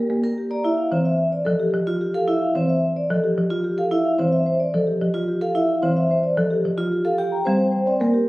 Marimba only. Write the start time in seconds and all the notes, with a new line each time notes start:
0.10 A#3
0.92 E3
1.47 F3
1.74 F3
2.56 E3
3.10 F3
3.38 F3
4.20 E3
4.74 F3
5.01 F3
5.83 E3
6.37 F3
6.65 F3
7.47 G3
8.01 A#3